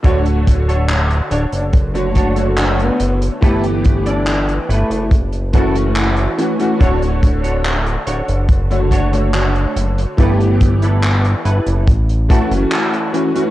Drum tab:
HH |xxxxxxxxxxxxxxxx|xxxxxxxxxxxxxxxx|xxxxxxxxxxxxxxxx|xxxxxxxxxxxxxxxx|
CP |----x-------x---|----x-------x---|----x-------x---|----x-------x---|
BD |o-o-----o-o-----|o-o-----o-o-----|o-o-----o-o-----|o-o-----o-o-----|